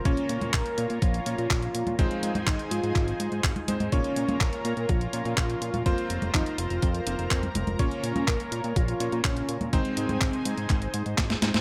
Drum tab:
HH |xxxxxxxxxxxxxxxx|xxxxxxxxxxxxxxxx|xxxxxxxxxxxxxxxx|xxxxxxxxxxxxxxxx|
CP |----x-------x---|----x---x---x---|----x-------x---|----x-------x---|
SD |----------------|----------------|----------------|----------------|
CG |---o-----------o|---o---------ooo|---o-----------o|---o---------ooo|
BD |o---o---o---o---|o---o---o---o---|o---o---o---o---|o---o---o---o---|

HH |xxxxxxxxxxxxxxxx|xxxxxxxxxxxxxxxx|
CP |----x-------x---|----x---x---x---|
SD |----------------|------------oooo|
CG |---o-----------o|---o---------ooo|
BD |o---o---o---o---|o---o---o---o---|